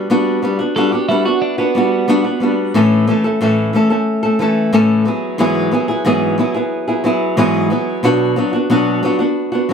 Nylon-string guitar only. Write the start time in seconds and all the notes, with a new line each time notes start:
Already playing: F#4
0.10 G3 B3 D4 F#4
0.42 G3 B3 D4 F#4
0.59 B3 D4 F#4
0.76 G3 B3 D4 F#4
0.92 B3 D4 F#4
1.09 G3 B3 D4 F#4
1.25 B3 D4 F#4
1.58 B3 D4 F#4
1.75 G3 B3 D4 F#4
2.08 G3 B3 D4 F#4
2.24 B3 D4 F#4
2.40 G3 B3 D4 F#4
2.74 A2 E3 A3 C#4 A4
3.07 E3 A3 C#4 A4
3.24 A3 C#4 A4
3.41 A2 E3 A3 C#4 A4
3.73 E3 A3 C#4 A4
3.90 A3 C#4 A4
4.23 A3 C#4 A4
4.39 E3 A3 C#4 A4
4.73 A2 E3 A3 C#4 A4
5.05 F#3 B3 E4 G#4
5.38 G#2 E3 F#3 B3 E4 G#4
5.71 F#3 B3 E4 G#4
5.88 F#3 B3 E4 G#4
6.05 G#2 E3 F#3 B3 E4 G#4
6.38 F#3 B3 E4 G#4
6.54 F#3 B3 E4 G#4
6.88 F#3 B3 E4 G#4
7.04 F#3 B3 E4 G#4
7.37 G#2 E3 F#3 B3 E4 G#4
7.70 F#3 B3 E4 G#4
8.03 B2 F#3 B3 D4 F#4
8.36 F#3 B3 D4 F#4
8.53 B3 D4 F#4
8.70 B2 F#3 B3 D4 F#4
9.03 F#3 B3 D4 F#4
9.19 B3 D4 F#4
9.52 B3 D4 F#4
9.69 F#3 B3